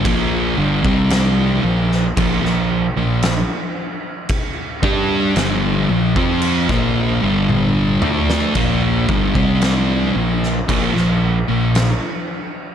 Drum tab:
CC |x---x---x---x---|x---x---x-------|x---x---x---x---|
SD |----o--o-o--o---|----o----o-----o|----o--o-o--o---|
T1 |----------------|------------o---|----------------|
T2 |----------------|--------------o-|----------------|
BD |o--o----o-------|o-o----o-o------|o-oo----o-------|